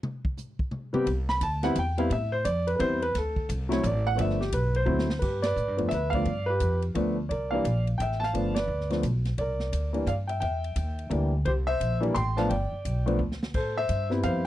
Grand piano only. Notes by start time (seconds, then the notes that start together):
0.93 G3 B3 C4 G4
1.29 B5
1.43 A5
1.63 G3 B3 C4 E4 F#5
1.79 G5
1.97 G3 B3 C4 E4 F5
2.13 E5
2.32 C5
2.45 D5
2.67 B4
2.76 G3 B3 C4 B4
2.80 E4 C5
3.02 B4
3.18 A4
3.69 F#3 A3 C4 E4 C#5
3.86 D5
4.07 F#5
4.15 F3 A3 B3 D4
4.21 E5
4.41 G4
4.54 B4
4.76 C5
4.86 F#3 A3 C4 E4
5.19 G4 B4
5.42 B4 D5
5.77 F3 A3 B3 D4
5.89 E5
5.94 B4
6.10 F3 A3 F5
6.14 B3 D4 D5
6.46 G4 B4
6.94 F3 A3 B3 D4
7.29 A#4 D5
7.51 E3 G3 A#3 D4 D5 F5
7.98 E5 G5
8.20 A5
8.24 F5
8.33 F3 A3 B3 D4
8.55 D5
8.59 B4
8.90 F3 A3 B3 D4
9.38 A#4 D5
9.93 E3 G3 A#3 D4
10.08 D5 F5
10.27 E5 G5
10.40 E5 G5
11.10 E3 G3 A#3 D4
11.45 G4 C5
11.67 C5 E5
12.01 E3 G3 A#3 D4
12.14 G5 C6
12.37 F3 A3 B3 D4 F5 A5
12.49 D5 G5
13.06 F3 A3 B3 D4
13.55 A4 C5
13.77 C5 E5
14.10 G3 B3 C4 E4
14.24 C5 F5